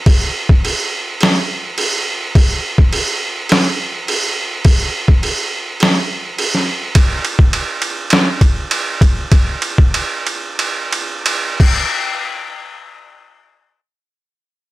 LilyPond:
\new DrumStaff \with { instrumentName = "Drums" } \drummode { \time 4/4 \tempo 4 = 104 <cymc bd>8. bd16 cymc4 <cymc sn>4 cymc4 | <cymc bd>8. bd16 cymc4 <cymc sn>4 cymc4 | <cymc bd>8. bd16 cymc4 <cymc sn>4 cymc16 sn8. | <bd cymr>8 cymr16 bd16 cymr8 cymr8 <cymr sn>8 <bd cymr>8 cymr8 <bd cymr>8 |
<bd cymr>8 cymr16 bd16 cymr8 cymr8 cymr8 cymr8 cymr8 <cymc bd>8 | r4 r4 r4 r4 | }